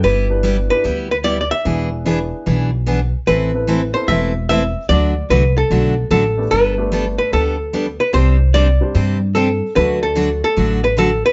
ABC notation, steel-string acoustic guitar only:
X:1
M:4/4
L:1/8
Q:"Swing" 1/4=148
K:G
V:1 name="Steel-string acoustic guitar"
[G,B,EG] z [G,B,EG] z [G,B,EG] z [G,B,EG] z | [E,B,D^G] z [E,B,DG] z [E,B,DG] z [E,B,DG] z | [E,A,CEB] z [E,A,CEB] z [E,A,CEB] z [E,A,CEB] z | [D,F,A,DF] z [D,F,A,DF] z [D,F,A,DF] z [D,F,A,DF] z |
[G,B,DA] z [G,B,DA] z [G,B,DA] z [G,B,DA] z | [C,G,CDG] z [C,G,CDG] z [C,G,CDG] z [C,G,CDG] z | [D,F,A,DF] z [D,F,A,DF] z [D,F,A,DF] z [D,F,A,DF] z |]